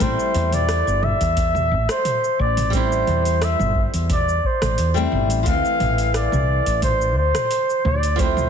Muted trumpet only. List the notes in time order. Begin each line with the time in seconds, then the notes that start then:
0.02 C5
0.54 D5
1.04 E5
1.90 C5
2.41 D5
2.75 C5
3.43 E5
4.12 D5
4.46 C5
5.48 F5
6.16 D5
6.83 C5
7.18 C5
7.86 D5
8.20 C5